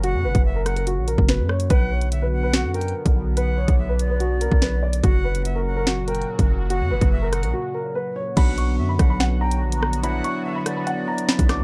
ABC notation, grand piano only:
X:1
M:4/4
L:1/16
Q:1/4=144
K:Bm
V:1 name="Grand piano"
F2 B3 ^A2 A F2 A2 B2 c2 | B2 c3 B2 B F2 ^A6 | B2 c3 B2 B F2 ^A2 B2 d2 | F2 B3 ^A2 A F2 A6 |
F2 B3 ^A2 z F2 A2 B2 c2 | b2 c'3 b2 b f2 ^a6 | b2 c'3 b2 b f2 ^a2 b2 d'2 |]